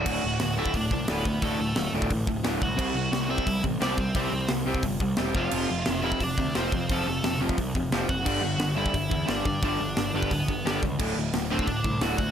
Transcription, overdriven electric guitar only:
0.06 0.22 D2 medium
0.06 0.22 A2 loud
0.06 0.22 D3 loud
0.24 0.39 D2 medium
0.24 0.39 A2 medium
0.41 0.56 D2 medium
0.41 0.56 A2 medium
0.58 0.73 D2 medium
0.58 0.74 A2 loud
0.58 0.74 D3 loud
0.77 0.91 D2 medium
0.77 0.91 A2 medium
0.92 1.07 D2 medium
0.92 1.08 A2 medium
1.09 1.24 D2 medium
1.09 1.25 A2 medium
1.09 1.25 D3 medium
1.26 1.41 D2 medium
1.26 1.41 A2 medium
1.42 1.58 D2 medium
1.42 1.59 A2 loud
1.42 1.59 D3 loud
1.60 1.75 D2 medium
1.60 1.76 A2 medium
1.78 1.92 D2 medium
1.78 1.93 A2 medium
1.95 2.10 D2 medium
1.95 2.10 A2 loud
1.95 2.11 D3 medium
2.11 2.26 D2 medium
2.11 2.26 A2 medium
2.28 2.42 D2 medium
2.28 2.43 A2 medium
2.44 2.60 D2 medium
2.44 2.60 A2 medium
2.44 2.61 D3 medium
2.61 2.76 D2 medium
2.61 2.77 A2 medium
2.77 2.93 C3 medium
2.77 2.94 G3 medium
2.77 2.95 C4 loud
2.94 3.10 C3 medium
2.94 3.11 G3 medium
3.12 3.28 C3 medium
3.12 3.28 G3 medium
3.29 3.45 C3 medium
3.29 3.45 G3 medium
3.29 3.46 C4 loud
3.46 3.62 C3 medium
3.46 3.62 G3 medium
3.64 3.79 C3 medium
3.64 3.80 G3 medium
3.81 3.97 C3 medium
3.81 3.97 G3 medium
3.81 3.98 C4 loud
3.98 4.14 C3 medium
3.98 4.14 G3 medium
4.15 4.31 C3 loud
4.15 4.32 G3 loud
4.15 4.32 C4 loud
4.32 4.48 C3 medium
4.32 4.48 G3 medium
4.49 4.65 C3 medium
4.49 4.65 G3 medium
4.66 4.82 C3 medium
4.66 4.83 G3 medium
4.66 4.83 C4 loud
4.84 4.99 C3 medium
4.84 4.99 G3 medium
5.01 5.17 C3 medium
5.01 5.17 G3 medium
5.18 5.34 C3 medium
5.18 5.34 G3 medium
5.18 5.34 C4 medium
5.35 5.50 F2 loud
5.35 5.51 C3 medium
5.35 5.52 F3 loud
5.51 5.68 F2 medium
5.51 5.69 C3 medium
5.51 5.69 F3 medium
5.71 5.85 F2 medium
5.71 5.85 C3 medium
5.87 6.02 F2 medium
5.87 6.03 C3 medium
6.03 6.19 F2 medium
6.03 6.20 C3 loud
6.03 6.20 F3 loud
6.22 6.37 F2 medium
6.22 6.37 C3 medium
6.39 6.54 F2 medium
6.39 6.54 C3 medium
6.55 6.71 F2 medium
6.55 6.71 C3 medium
6.55 6.72 F3 medium
6.73 6.88 F2 medium
6.73 6.88 C3 medium
6.91 7.06 F2 medium
6.91 7.06 C3 medium
6.91 7.07 F3 loud
7.08 7.22 F2 medium
7.08 7.23 C3 medium
7.24 7.39 F2 medium
7.24 7.39 C3 medium
7.41 7.57 F2 medium
7.41 7.57 C3 medium
7.41 7.57 F3 medium
7.58 7.73 F2 medium
7.58 7.73 C3 medium
7.76 7.91 F2 medium
7.76 7.91 C3 medium
7.93 8.07 F2 medium
7.93 8.07 C3 medium
7.93 8.09 F3 medium
8.08 8.24 F2 medium
8.08 8.24 C3 medium
8.25 8.41 G2 medium
8.25 8.42 D3 loud
8.25 8.42 G3 loud
8.43 8.58 G2 medium
8.43 8.59 D3 medium
8.60 8.75 G2 medium
8.60 8.76 D3 medium
8.76 8.92 G2 medium
8.76 8.93 D3 loud
8.76 8.94 G3 medium
8.94 9.09 G2 medium
8.94 9.09 D3 medium
9.11 9.26 G2 medium
9.11 9.27 D3 medium
9.27 9.44 G2 medium
9.27 9.45 D3 medium
9.27 9.45 G3 medium
9.45 9.61 G2 medium
9.45 9.61 D3 medium
9.64 9.79 G2 medium
9.64 9.80 D3 medium
9.64 9.80 G3 loud
9.81 9.96 G2 medium
9.81 9.96 D3 medium
9.98 10.13 G2 medium
9.98 10.13 D3 medium
10.15 10.31 G2 medium
10.15 10.31 D3 medium
10.15 10.31 G3 loud
10.32 10.47 G2 medium
10.32 10.47 D3 medium
10.49 10.64 G2 medium
10.49 10.64 D3 medium
10.65 10.81 G2 medium
10.65 10.82 D3 medium
10.65 10.82 G3 medium
10.84 10.99 G2 medium
10.84 10.99 D3 medium
10.99 11.16 D2 medium
10.99 11.16 A2 medium
10.99 11.16 D3 medium
11.18 11.33 D2 medium
11.18 11.33 A2 medium
11.34 11.50 D2 medium
11.34 11.50 A2 medium
11.51 11.67 D2 medium
11.51 11.67 A2 medium
11.51 11.67 D3 loud
11.68 11.83 D2 medium
11.68 11.84 A2 medium
11.85 12.00 D2 medium
11.85 12.01 A2 medium
12.01 12.18 D2 medium
12.01 12.18 A2 medium
12.01 12.18 D3 medium
12.19 12.31 D2 medium
12.19 12.31 A2 medium

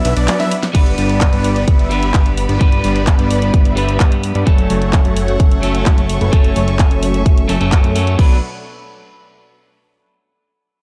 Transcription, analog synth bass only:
0.05 0.14 B1 loud
0.17 0.28 B1 loud
0.75 0.96 G1 medium
0.98 1.30 G1 loud
1.33 1.65 G1 loud
1.68 2.12 G1 medium
2.14 2.47 G1 medium
2.49 2.58 G1 medium
2.61 2.82 G1 loud
2.84 3.16 G1 loud
3.19 3.51 G1 loud
3.54 3.98 G1 medium
4.00 4.33 G2 medium
4.35 4.44 G2 medium
4.47 4.68 F#1 loud
4.70 5.03 F#1 loud
5.05 5.38 F#1 loud
5.40 5.84 F#1 medium
5.86 6.19 F#1 medium
6.21 6.31 F#1 loud
6.33 6.54 F#1 loud
6.56 6.89 F#1 loud
6.91 7.24 F#1 loud
7.26 7.47 F#1 medium
7.49 7.58 F#1 loud
7.61 7.82 F#1 loud
7.84 8.17 F#2 medium
8.19 8.40 B1 loud

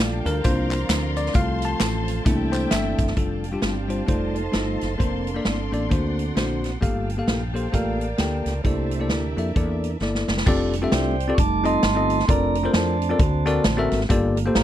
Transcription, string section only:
0.00 1.33 F5 medium
0.00 0.43 G5 medium
0.00 0.43 A5 medium
0.44 1.35 D5 medium
0.44 1.35 A#5 medium
0.44 2.24 C6 medium
1.35 2.25 C5 medium
1.35 2.25 F5 medium
1.35 3.15 A5 medium
2.26 3.16 D5 medium
2.26 3.17 E5 medium
2.26 3.16 G5 medium
3.17 4.07 D5 medium
3.17 4.97 F5 medium
3.17 4.07 G5 medium
3.17 5.88 A5 medium
4.09 4.99 D#5 medium
4.09 6.80 C6 medium
5.01 6.81 D5 medium
5.01 5.91 F5 medium
5.90 6.81 F#5 medium
6.83 8.63 F5 medium
6.83 8.63 G5 medium
6.83 10.44 A5 medium
8.65 10.45 D5 medium
8.65 10.46 E5 medium

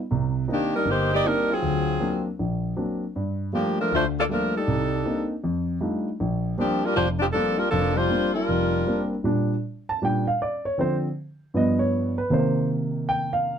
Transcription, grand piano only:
0.11 0.43 C2 medium
0.11 0.43 C3 medium
0.48 0.74 A#3 soft
0.48 0.74 C4 soft
0.48 0.74 D4 soft
0.48 0.74 D#4 medium
0.86 1.18 G1 medium
1.24 1.50 A#3 soft
1.24 1.50 C4 soft
1.24 1.50 D4 soft
1.24 1.50 D#4 medium
1.62 1.95 D2 medium
2.00 2.26 F#3 soft
2.00 2.26 A#3 soft
2.00 2.26 C4 soft
2.00 2.27 D4 medium
2.39 2.72 A#1 medium
2.76 3.02 F#3 soft
2.76 3.03 A#3 soft
2.76 3.03 C4 soft
2.76 3.03 D4 medium
3.16 3.48 G2 medium
3.53 3.79 G3 soft
3.53 3.79 A3 soft
3.53 3.79 A#3 soft
3.53 3.79 F4 medium
3.91 4.24 D2 medium
3.91 4.24 D3 medium
4.29 4.55 G3 soft
4.29 4.55 A3 soft
4.29 4.55 A#3 soft
4.29 4.56 F4 soft
4.68 5.00 C2 medium
5.05 5.31 A#3 soft
5.05 5.32 C4 soft
5.05 5.31 D4 soft
5.05 5.32 D#4 medium
5.44 5.76 F2 medium
5.81 6.07 G3 soft
5.81 6.07 A3 soft
5.81 6.07 D4 soft
5.81 6.07 D#4 soft
5.81 6.07 F4 medium
6.20 6.53 A#1 medium
6.58 6.84 G3 soft
6.58 6.84 A#3 soft
6.58 6.84 C4 soft
6.58 6.84 D4 medium
6.96 7.29 F1 medium
7.34 7.60 G3 soft
7.34 7.60 A#3 soft
7.34 7.60 C4 soft
7.34 7.61 D4 medium
7.72 8.05 F1 medium
8.10 8.36 G3 soft
8.10 8.36 A#3 soft
8.10 8.36 C4 soft
8.10 8.36 D4 soft
8.49 8.81 F1 medium
8.87 9.13 G3 soft
8.87 9.13 A#3 soft
8.87 9.13 C4 soft
8.87 9.13 D4 soft
9.24 9.53 A#2 soft
9.24 9.53 G3 soft
9.24 9.53 D4 medium
9.89 10.01 A5 medium
10.02 10.24 A#2 soft
10.02 10.24 G3 soft
10.02 10.24 D4 medium
10.02 10.27 G5 medium
10.27 10.39 F5 medium
10.42 10.64 D5 medium
10.65 10.77 C#5 medium
10.78 11.06 D3 soft
10.78 11.06 F3 soft
10.78 11.06 C4 medium
10.78 10.95 C5 medium
11.54 12.13 G2 soft
11.54 12.14 F3 soft
11.54 12.14 B3 medium
11.54 11.79 D#5 medium
11.79 12.14 C#5 medium
12.18 12.30 B4 medium
12.30 13.59 C3 soft
12.30 13.59 D#3 soft
12.30 13.59 A#3 medium
12.30 12.67 C5 medium
13.09 13.31 G5 medium
13.33 13.59 F5 medium

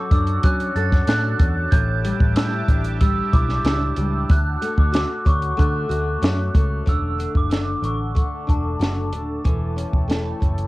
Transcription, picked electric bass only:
0.11 0.37 F#2 medium
0.44 0.69 F#3 loud
0.76 1.01 F#2 loud
1.08 1.33 A2 loud
1.40 1.66 E2 medium
1.73 2.11 A1 loud
2.20 2.33 A1 medium
2.36 2.62 A2 loud
2.69 3.20 A1 medium
3.34 3.59 B1 loud
3.64 3.91 C#2 loud
3.98 4.23 C#2 medium
4.30 4.56 D2 loud
4.78 5.04 D2 medium
5.26 5.52 D2 loud
5.59 5.84 D3 loud
5.90 6.16 D2 medium
6.22 6.48 F#2 medium
6.55 6.81 C#2 medium
6.87 7.26 E1 medium
7.35 7.74 F#1 medium
7.82 8.22 A1 medium
8.49 8.75 E1 medium
8.80 9.12 F#1 medium
9.12 9.38 D#1 medium
9.45 9.84 E1 medium
9.93 10.32 E1 medium
10.42 10.67 F#1 medium

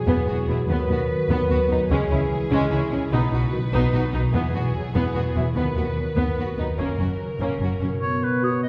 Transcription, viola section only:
0.07 0.26 B3 soft
0.28 0.36 B3 soft
0.49 0.57 B3 soft
0.69 0.88 B3 soft
0.89 0.97 B3 soft
1.30 1.49 B3 medium
1.50 1.58 B3 soft
1.70 1.78 B3 soft
1.91 2.09 C#4 medium
2.11 2.19 C#4 soft
2.51 2.70 C#4 medium
2.71 2.79 C#4 soft
2.91 2.99 C#4 soft
3.12 3.31 D#4 medium
3.32 3.40 D#4 soft
3.74 3.92 D#4 medium
3.94 4.02 D#4 soft
4.14 4.22 D#4 soft
4.34 4.53 B3 soft
4.55 4.63 B3 soft
4.95 5.14 B3 medium
5.15 5.23 B3 soft
5.35 5.43 B3 soft
5.56 5.75 B3 soft
5.76 5.84 B3 soft
6.16 6.36 B3 soft
6.37 6.45 B3 soft
6.57 6.65 B3 soft
6.78 6.98 C#4 soft
6.99 7.07 C#4 soft
7.41 7.59 C#4 soft
7.60 7.68 C#4 soft
7.82 7.90 C#4 soft

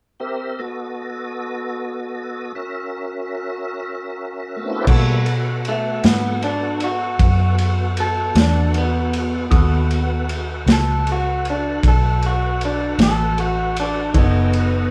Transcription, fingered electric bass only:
4.87 6.00 B2 medium
6.04 7.16 G#2 medium
7.19 8.32 F#2 medium
8.35 9.48 E2 medium
9.52 10.64 D#2 medium
10.66 11.79 C#2 medium
11.84 12.96 B1 medium
12.98 14.11 A1 medium
14.15 14.91 F#1 medium

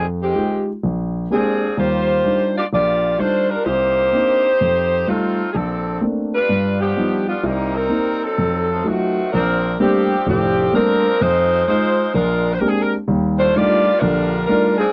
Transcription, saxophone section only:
0.22 0.65 D#3 medium
0.22 0.65 G#3 medium
0.22 0.66 C4 medium
0.22 0.66 G4 medium
1.32 1.75 F3 medium
1.32 1.75 C4 medium
1.32 1.75 D4 medium
1.32 1.76 G#4 medium
1.79 2.53 A#3 medium
1.79 2.53 F4 medium
1.79 2.53 G4 medium
1.79 2.53 C5 medium
2.57 2.65 A#3 medium
2.57 2.64 F4 medium
2.57 2.65 G4 medium
2.57 2.65 D5 medium
2.73 3.17 A#3 medium
2.73 3.17 F4 medium
2.73 3.17 G4 medium
2.73 3.17 D5 medium
3.19 3.50 A3 medium
3.19 3.48 D4 medium
3.19 3.49 F4 medium
3.19 3.50 C5 medium
3.50 3.66 G3 medium
3.50 3.66 D4 medium
3.50 3.66 F4 medium
3.50 3.66 A#4 medium
3.65 4.60 A#3 medium
3.65 5.07 D#4 medium
3.65 5.07 G4 medium
3.65 5.07 C5 medium
5.08 5.51 A3 medium
5.08 5.51 C4 medium
5.08 5.51 D#4 medium
5.08 5.51 F4 medium
5.52 6.03 C4 medium
5.52 5.56 G#4 medium
5.52 6.03 A4 medium
5.56 6.03 F3 medium
5.56 6.03 D4 medium
6.34 6.78 G3 medium
6.34 6.78 D4 medium
6.34 6.78 F4 medium
6.34 6.78 B4 medium
6.80 7.24 F3 medium
6.80 7.24 B3 medium
6.80 7.24 D4 medium
6.80 7.24 G4 medium
7.29 7.43 G3 medium
7.29 7.43 B3 medium
7.29 7.43 D4 medium
7.29 7.43 F4 medium
7.45 7.74 G3 medium
7.45 7.75 A#3 medium
7.45 7.75 C4 medium
7.45 7.75 D#4 medium
7.75 8.22 G3 medium
7.75 8.22 C4 medium
7.75 8.22 D#4 medium
7.75 8.22 A#4 medium
8.24 8.86 F#3 medium
8.24 8.70 C4 medium
8.24 8.70 D#4 medium
8.24 8.86 A4 medium
8.71 8.85 A3 medium
8.71 8.85 C4 medium
8.71 8.85 D#4 medium
8.71 8.85 F4 medium
8.88 9.33 D#3 medium
8.88 9.33 A3 medium
8.88 9.32 C4 medium
8.88 9.33 F#4 medium
9.32 9.76 F3 medium
9.32 9.76 C4 medium
9.32 9.76 D4 medium
9.32 9.76 A#4 medium
9.80 10.27 F3 medium
9.80 10.26 C4 medium
9.80 10.26 D4 medium
9.80 10.27 G4 medium
10.29 10.71 F3 medium
10.29 10.72 C4 medium
10.29 10.71 D4 medium
10.29 10.71 G4 medium
10.75 11.21 F3 medium
10.75 11.21 C4 medium
10.75 11.21 D4 medium
10.75 11.21 A#4 loud
11.21 11.67 G#3 medium
11.21 11.67 D#4 medium
11.21 11.67 F4 medium
11.21 11.67 C5 medium
11.68 12.11 G#3 medium
11.68 12.11 D#4 medium
11.68 12.11 F4 medium
11.68 12.11 C5 medium
12.15 12.52 G#3 medium
12.15 12.53 D4 medium
12.15 12.52 F4 medium
12.15 12.52 A#4 medium
12.54 12.59 C5 medium
12.59 12.68 A#4 medium
12.69 12.80 G#4 medium
12.82 12.93 A#4 medium
13.39 13.54 A3 medium
13.39 13.53 D4 medium
13.39 13.54 F4 medium
13.39 13.54 C5 medium
13.56 14.02 A#3 medium
13.56 13.99 F4 medium
13.56 14.02 G4 medium
13.56 14.02 D5 loud
14.00 14.45 G3 medium
14.00 14.45 D4 medium
14.00 14.45 F4 medium
14.00 14.45 A#4 medium
14.46 14.76 G3 medium
14.46 14.76 D4 medium
14.46 14.76 F4 medium
14.46 14.76 A#4 medium
14.78 14.93 F3 medium
14.78 14.93 C4 medium
14.78 14.93 D4 medium
14.78 14.93 G#4 medium

